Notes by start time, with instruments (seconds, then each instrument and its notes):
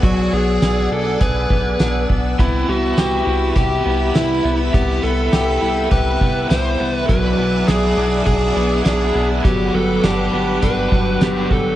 Already playing: clean electric guitar B3 D4 G#4, string machine D5 F#5 G#5 E6
0.03 analog synth bass B1, clean electric guitar F#3, electric slide guitar F#4, kick, closed hi-hat
0.33 analog synth bass B1, clean electric guitar B3, electric slide guitar G#4
0.62 analog synth bass B1, clean electric guitar G#4, snare, closed hi-hat, tambourine
0.91 analog synth bass B1, clean electric guitar D4, electric slide guitar A4
1.21 analog synth bass B1, clean electric guitar G#4, electric slide guitar B4, kick, closed hi-hat
1.50 analog synth bass B1, clean electric guitar B3, kick
1.79 analog synth bass B1, clean electric guitar D4, snare, closed hi-hat, tambourine
2.09 analog synth bass B1, clean electric guitar B3, kick
2.38 analog synth bass C2, overdriven electric guitar C3 E3 G3 B3 E4, clean electric guitar B3, electric slide guitar E4, string machine E5 B5, kick, closed hi-hat
2.67 analog synth bass C2, clean electric guitar B3, overdriven electric guitar B3 E4, electric slide guitar F#4
2.71 overdriven electric guitar G3
2.96 analog synth bass C2, overdriven electric guitar E3 G3 B3, clean electric guitar G4, snare, closed hi-hat, tambourine
3.01 overdriven electric guitar E4
3.25 analog synth bass C2, overdriven electric guitar B3 E4, clean electric guitar E4
3.30 overdriven electric guitar G3
3.55 analog synth bass C2, overdriven electric guitar C3 E3 G3 B3 E4, clean electric guitar G4, electric slide guitar G4, kick, closed hi-hat
3.84 analog synth bass C2, clean electric guitar B3, overdriven electric guitar B3 E4
3.89 overdriven electric guitar G3
4.14 analog synth bass C2, overdriven electric guitar E3 G3 B3, clean electric guitar E4, electric slide guitar E4, snare, closed hi-hat, tambourine
4.18 overdriven electric guitar E4
4.44 analog synth bass C2, clean electric guitar B3, overdriven electric guitar B3 E4
4.48 overdriven electric guitar G3
4.73 analog synth bass C2, overdriven electric guitar C3 E3 G3 B3 E4, clean electric guitar B3, electric slide guitar G4, kick, closed hi-hat
5.03 analog synth bass C2, clean electric guitar B3, overdriven electric guitar B3 E4, electric slide guitar A4
5.07 overdriven electric guitar G3
5.32 analog synth bass C2, overdriven electric guitar E3 G3 B3, clean electric guitar G4, snare, closed hi-hat, tambourine
5.36 overdriven electric guitar E4
5.61 analog synth bass C2, overdriven electric guitar B3 E4, clean electric guitar E4
5.66 overdriven electric guitar G3
5.91 analog synth bass C2, overdriven electric guitar C3 E3 G3 B3 E4, clean electric guitar G4, electric slide guitar B4, kick, closed hi-hat
6.20 analog synth bass C2, clean electric guitar B3, overdriven electric guitar B3 E4, kick
6.24 overdriven electric guitar G3
6.49 analog synth bass C2, overdriven electric guitar E3 G3 B3, clean electric guitar E4, electric slide guitar C5, snare, closed hi-hat, tambourine
6.54 overdriven electric guitar E4
6.79 analog synth bass C2, clean electric guitar B3, overdriven electric guitar B3 E4
6.83 overdriven electric guitar G3
6.94 electric slide guitar B4
7.08 analog synth bass B1, overdriven electric guitar B2 F#3 G#3 D4 E4, clean electric guitar F#3, electric slide guitar B4, string machine D5 F#5 G#5 E6, kick, closed hi-hat
7.37 analog synth bass B1, clean electric guitar B3, overdriven electric guitar D4 E4
7.42 overdriven electric guitar G#3
7.67 analog synth bass B1, overdriven electric guitar F#3 G#3 D4, electric slide guitar G#4, clean electric guitar G#4, snare, closed hi-hat, tambourine
7.72 overdriven electric guitar E4
7.96 analog synth bass B1, clean electric guitar D4, overdriven electric guitar D4 E4
8.01 overdriven electric guitar G#3
8.26 analog synth bass B1, overdriven electric guitar B2 F#3 G#3 D4 E4, clean electric guitar G#4, electric slide guitar G#4, kick, closed hi-hat
8.55 analog synth bass B1, clean electric guitar B3, overdriven electric guitar D4 E4
8.60 overdriven electric guitar G#3
8.84 analog synth bass B1, overdriven electric guitar F#3 G#3 D4, clean electric guitar D4, electric slide guitar G#4, snare, closed hi-hat, tambourine
8.89 overdriven electric guitar E4
9.14 analog synth bass B1, clean electric guitar B3, overdriven electric guitar D4 E4
9.18 overdriven electric guitar G#3
9.44 analog synth bass G1, clean electric guitar F#3, overdriven electric guitar G3 B3 D4 F#4, electric slide guitar G4, string machine B4 F#5 G5 D6, kick, closed hi-hat
9.73 analog synth bass G1, clean electric guitar F#3, overdriven electric guitar D4 F#4, electric slide guitar A4
9.77 overdriven electric guitar B3
10.02 analog synth bass G1, overdriven electric guitar G3 B3 D4, clean electric guitar D4, electric slide guitar G4, snare, closed hi-hat, tambourine
10.07 overdriven electric guitar F#4
10.32 analog synth bass G1, clean electric guitar B3, overdriven electric guitar D4 F#4
10.36 overdriven electric guitar B3
10.62 analog synth bass G1, overdriven electric guitar G3 B3 D4 F#4, clean electric guitar D4, electric slide guitar B4, kick, closed hi-hat
10.91 analog synth bass G1, clean electric guitar F#3, overdriven electric guitar D4 F#4, kick
10.96 overdriven electric guitar B3
11.21 analog synth bass G1, overdriven electric guitar G3 B3 D4, clean electric guitar B3, electric slide guitar G4, snare, closed hi-hat, tambourine
11.25 overdriven electric guitar F#4
11.50 analog synth bass G1, clean electric guitar F#3, overdriven electric guitar D4 F#4, electric slide guitar A4, kick
11.54 overdriven electric guitar B3